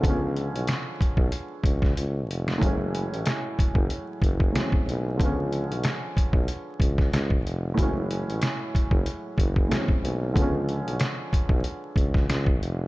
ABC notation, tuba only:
X:1
M:4/4
L:1/16
Q:"Swing 16ths" 1/4=93
K:F#m
V:1 name="Tuba" clef=bass
C,,3 B,,, z3 B,,, z2 C,,2 C,,2 ^E,,,2 | F,,,3 A,,, z3 F,,, z2 F,,,2 z2 B,,,2 | C,,3 B,,, z3 B,,, z2 C,,2 C,,2 ^E,,,2 | F,,,3 A,,, z3 F,,, z2 F,,,2 z2 B,,,2 |
C,,3 B,,, z3 B,,, z2 C,,2 C,,2 ^E,,,2 |]